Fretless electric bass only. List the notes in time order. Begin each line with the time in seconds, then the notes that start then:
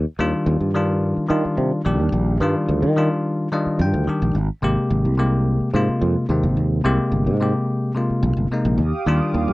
0.19 D#2
0.46 D#2
0.60 G2
1.17 muted fretless electric bass stroke
1.30 D#3
1.45 muted fretless electric bass stroke
1.57 C3
1.86 A#1
1.99 D#2
2.12 A#1
2.40 G2
2.68 D2
2.82 D#3
3.66 muted fretless electric bass stroke
3.79 G2
3.94 D2
4.08 muted fretless electric bass stroke
4.22 A#1
4.35 G#1
4.63 G#1
4.90 G#1
5.05 C2
5.60 muted fretless electric bass stroke
5.74 G#2
5.88 muted fretless electric bass stroke
6.01 F2
6.29 D#2
6.43 G#1
6.57 D#2
6.85 C2
7.12 G1
7.27 G#2
8.10 muted fretless electric bass stroke
8.23 C2
8.37 G1
8.50 muted fretless electric bass stroke
8.65 A#1
8.78 D#2
9.06 D#2
9.34 D#2
9.48 G2